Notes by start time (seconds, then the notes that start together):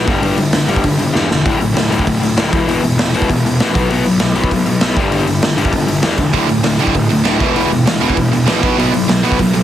0.07 G1 G2 D3 G3, kick, open hi-hat
0.22 G1 G2 D3 G3, open hi-hat
0.38 G1 G2 D3, open hi-hat
0.53 G1 G2 D3, snare, open hi-hat
0.67 G1 G2 D3 G3, open hi-hat
0.76 kick
0.83 G1 G2 D3, kick, open hi-hat
0.99 G1 G2 D3, open hi-hat
1.13 E2 G2 D3 G3, snare
1.28 E1 G2 D3, snare
1.44 D1 D2 A2 D3, kick, open hi-hat
1.60 D1 D2 A2, open hi-hat
1.74 D1 D2 A2, snare, open hi-hat
1.89 D1 D2 A2 D3, open hi-hat
1.99 kick
2.05 D1 D2 A2, kick, open hi-hat
2.21 D1 D2 A2, open hi-hat
2.37 D1 D2 A2 D3, snare, open hi-hat
2.51 E1 E2 B2 E3, kick, open hi-hat
2.67 E1 E2 B2 E3, open hi-hat
2.82 E1 E2 B2, open hi-hat
2.97 E1 E2 B2, snare, open hi-hat
3.13 E1 E2 B2 E3, open hi-hat
3.22 kick
3.29 E1 E2 B2, kick, open hi-hat
3.45 E1 E2 B2, open hi-hat
3.60 A1 E2 B2 E3, snare, open hi-hat
3.74 B1 B2 F#3 B3, kick, open hi-hat
3.90 B1 B2 F#3 B3, open hi-hat
4.05 B1 B2 F#3, open hi-hat
4.20 B1 B2 F#3, snare, open hi-hat
4.35 B1 B2 F#3 B3, open hi-hat
4.44 kick
4.51 B1 B2 F#3, kick, open hi-hat
4.66 B1 B2 F#3, open hi-hat
4.81 B1 B2 F#3 B3, snare, open hi-hat
4.96 G1 G2 D3 G3, kick, open hi-hat
5.11 G1 G2 D3 G3, open hi-hat
5.27 G1 G2 D3, open hi-hat
5.42 G1 G2 D3, snare, open hi-hat
5.57 G1 G2 D3 G3, open hi-hat
5.65 kick
5.71 G1 G2 D3, kick, open hi-hat
5.86 G1 G2 D3, open hi-hat
6.02 E2 G2 D3 G3, snare, open hi-hat
6.17 E1 G2 D3, kick, open hi-hat
6.33 D1 D2 A2 D3, kick, open hi-hat
6.48 D1 D2 A2, open hi-hat
6.63 D1 D2 A2, snare, open hi-hat
6.79 D1 D2 A2 D3, open hi-hat
6.87 kick
6.95 D1 D2 A2, kick, open hi-hat
7.10 D1 D2 A2, open hi-hat
7.25 D1 D2 A2 D3, snare, open hi-hat
7.40 E1 E2 B2 E3, kick, open hi-hat
7.55 E1 E2 B2 E3, open hi-hat
7.70 E1 E2 B2, open hi-hat
7.85 E1 E2 B2, snare, open hi-hat
8.00 E1 E2 B2 E3, open hi-hat
8.10 kick
8.16 E1 E2 B2, kick, open hi-hat
8.31 E1 E2 B2, open hi-hat
8.46 A#1 E2 B2 E3, snare, open hi-hat
8.62 B1 B2 F#3 B3, kick, open hi-hat
8.77 B1 B2 F#3 B3, open hi-hat
8.92 B1 B2 F#3, open hi-hat
9.08 B1 B2 F#3, snare, open hi-hat
9.23 B1 B2 F#3 B3, open hi-hat
9.32 kick
9.39 B1 B2 F#3, kick, open hi-hat
9.54 B1 B2 F#3, open hi-hat